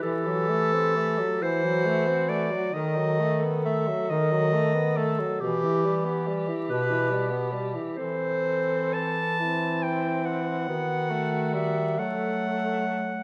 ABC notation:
X:1
M:6/8
L:1/16
Q:3/8=46
K:Em
V:1 name="Clarinet"
A6 c4 d2 | ^d4 e2 d4 A2 | G4 z2 B4 z2 | c4 a4 g2 f2- |
f4 e2 f6 |]
V:2 name="Alto saxophone"
G6 F6 | A8- A2 z2 | G12 | A6 E6 |
F6 A6 |]
V:3 name="Tenor saxophone" clef=bass
E, F, A, C A, F, E, F, A, C A, F, | ^D, F, A, B, A, F, D, F, A, B, A, F, | B,, E, G, B, G, E, B,, E, G, B, G, E, | C6 C6 |
B,2 A,2 G,2 A,6 |]
V:4 name="Bass clarinet" clef=bass
E,6 E,6 | ^D,6 D,6 | E,6 B,,6 | E,12 |
^D,6 F,6 |]